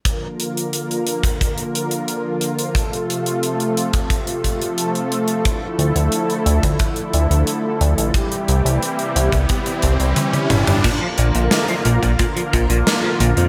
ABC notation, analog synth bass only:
X:1
M:4/4
L:1/16
Q:1/4=89
K:Bblyd
V:1 name="Analog synth bass" clef=bass
z16 | z16 | z2 D,, D,, z2 D,, D,, z2 D,, D,, z2 D,, A,,, | z2 C,, C,, z2 C,, C,, z2 C,, C,, z2 G,,, G,,, |
z2 B,,, B,,, z2 B,,, B,,, z2 B,,, B,,, z2 B,,, F,, |]